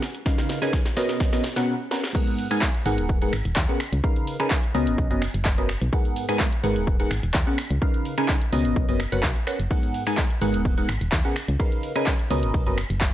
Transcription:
0.02 snare, open hi-hat, shaker
0.15 closed hi-hat, shaker
0.26 C#3 D#4 A#4 B4 F5, kick, snare, shaker
0.38 snare, closed hi-hat, shaker
0.49 snare, open hi-hat, shaker
0.62 C#3 D#4 A#4 B4 G#5, snare, closed hi-hat, shaker
0.73 kick, snare, shaker
0.85 snare, closed hi-hat, shaker
0.97 B2 C#4 A#4 B4 D#5, snare, open hi-hat, shaker
1.09 snare, closed hi-hat, shaker
1.20 kick, snare, shaker
1.33 B2 C#4 A#4 B4 D#5, snare, closed hi-hat, shaker
1.44 snare, open hi-hat, shaker
1.56 B2 C#4 A#4 B4 F#5, snare, closed hi-hat, shaker
1.91 C#4 A#4 B4 F#5, snare
2.04 snare
2.15 G#2 B3 G#4 A#4 F#5, kick, crash, shaker
2.27 closed hi-hat, shaker
2.38 open hi-hat, shaker
2.51 G#2 B3 G#4 A#4 G#5, finger snap, closed hi-hat, shaker
2.61 kick, clap, shaker
2.74 closed hi-hat, shaker
2.86 G#1 G#2 B3 G#4 A#4 F#5, open hi-hat, shaker
2.98 D#1, closed hi-hat, shaker
3.09 kick, shaker
3.22 G#2 B3 G#4 A#4 F#5, closed hi-hat, shaker
3.33 G#1, finger snap, open hi-hat, shaker
3.45 D#1, closed hi-hat, shaker
3.56 D#2, kick, clap, open hi-hat, shaker
3.69 C#3 B3 G#4 A#4 F#5, shaker
3.80 finger snap, open hi-hat, shaker
3.93 C#2, closed hi-hat, shaker
4.04 C#3 D#4 A#4 B4 F5, kick, shaker
4.16 closed hi-hat, shaker
4.27 open hi-hat, shaker
4.40 C#3 D#4 A#4 B4 G#5, finger snap, closed hi-hat, shaker
4.50 kick, clap, shaker
4.63 closed hi-hat, shaker
4.75 C#2 B2 C#4 A#4 B4 D#5, open hi-hat, shaker
4.87 G#1, closed hi-hat, shaker
4.98 B1, kick, shaker
5.11 F#1 B2 C#4 A#4 B4 D#5, closed hi-hat, shaker
5.22 finger snap, open hi-hat, shaker
5.34 F#1, closed hi-hat, shaker
5.45 kick, clap, shaker
5.58 B2 C#4 A#4 B4 D#5, closed hi-hat, shaker
5.69 finger snap, open hi-hat, shaker
5.81 B1, closed hi-hat, shaker
5.93 G#2 B3 G#4 A#4 F#5, kick, shaker
6.05 closed hi-hat, shaker
6.16 open hi-hat, shaker
6.29 G#2 B3 G#4 A#4 G#5, finger snap, closed hi-hat, shaker
6.39 kick, clap, shaker
6.52 closed hi-hat, shaker
6.64 G#1 G#2 B3 G#4 A#4 F#5, open hi-hat, shaker
6.76 D#1, closed hi-hat, shaker
6.87 kick, shaker
7.00 G#2 B3 G#4 A#4 F#5, closed hi-hat, shaker
7.11 G#1, finger snap, open hi-hat, shaker
7.23 D#1, closed hi-hat, shaker
7.34 D#2, kick, clap, open hi-hat, shaker
7.47 C#3 B3 G#4 A#4 F#5, shaker
7.58 finger snap, open hi-hat, shaker
7.70 C#2, closed hi-hat, shaker
7.82 C#3 D#4 A#4 B4 F5, kick, shaker
7.94 closed hi-hat, shaker
8.05 open hi-hat, shaker
8.18 C#3 D#4 A#4 B4 G#5, finger snap, closed hi-hat, shaker
8.28 kick, clap, shaker
8.41 closed hi-hat, shaker
8.53 C#2 B2 C#4 A#4 B4 D#5, open hi-hat, shaker
8.65 G#1, closed hi-hat, shaker
8.76 B1, kick, shaker
8.89 F#1 B2 C#4 A#4 B4 D#5, closed hi-hat, shaker
9.00 finger snap, open hi-hat, shaker
9.12 F#1 B2 C#4 A#4 B4 F#5, closed hi-hat, shaker
9.23 B1, kick, clap, shaker
9.36 closed hi-hat, shaker
9.47 C#4 A#4 B4 F#5, finger snap, open hi-hat, shaker
9.59 F#1, closed hi-hat, shaker
9.71 G#2 B3 G#4 A#4 F#5, kick, ride, shaker
9.83 closed hi-hat, shaker
9.94 open hi-hat, shaker
10.07 G#2 B3 G#4 A#4 G#5, finger snap, closed hi-hat, shaker
10.17 kick, clap, ride, shaker
10.30 closed hi-hat, shaker
10.42 G#1 G#2 B3 G#4 A#4 F#5, open hi-hat, shaker
10.54 D#1, closed hi-hat, shaker
10.65 kick, ride, shaker
10.78 G#2 B3 G#4 A#4 F#5, closed hi-hat, shaker
10.89 G#1, finger snap, open hi-hat, shaker
11.01 D#1, closed hi-hat, shaker
11.12 D#2, kick, clap, open hi-hat, ride, shaker
11.25 C#3 B3 G#4 A#4 F#5, shaker
11.36 finger snap, open hi-hat, shaker
11.48 C#2, closed hi-hat, shaker
11.60 C#3 D#4 A#4 B4 F5, kick, ride, shaker
11.72 closed hi-hat, shaker
11.83 open hi-hat, shaker
11.96 C#3 D#4 A#4 B4 G#5, finger snap, closed hi-hat, shaker
12.06 kick, clap, ride, shaker
12.19 closed hi-hat, shaker
12.31 C#2 B2 C#4 A#4 B4 D#5, open hi-hat, shaker
12.43 G#1, closed hi-hat, shaker
12.54 B1, kick, ride, shaker
12.66 F#1 B2 C#4 A#4 B4 D#5, closed hi-hat, shaker
12.78 finger snap, open hi-hat, shaker
12.90 F#1, closed hi-hat, shaker
13.01 kick, clap, ride, shaker

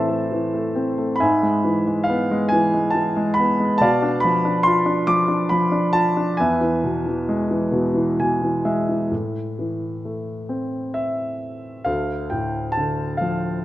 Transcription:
Already playing: A2 E3 A3 C4 C5 E5 A5 C6
0.09 A3
0.32 E3
0.54 A3
0.75 C4
0.98 A3
1.16 B5
1.20 G#2 E5 G#5
1.43 G#3
1.65 E3
1.87 G#3
2.04 F5
2.10 B3
2.31 G#3
2.49 E3 G#5
2.74 G#3
2.90 A5
2.95 E3
3.17 G#3
3.34 B5
3.39 B3
3.60 G#3
3.78 B2 D5 A5
3.82 F5
4.02 D4
4.20 B5
4.25 F3
4.45 D4
4.63 F4 C6
4.86 D4
5.07 F3 D6
5.28 D4
5.49 F3 B5
5.72 D4
5.93 F4 A5
6.17 D4
6.37 E2 B4 E5 G#5
6.61 E3
6.84 B2
7.06 E3
7.29 G#3
7.51 E3
7.72 B2
7.94 E3
8.19 B2 G#5
8.42 E3
8.65 G#3 E5
8.89 E3
9.11 A2
9.59 E3
10.05 A3
10.49 C4
10.94 E5
11.85 D2 A4 F5
12.30 A2 G5
12.72 A5
12.77 D3
13.17 F3 F5

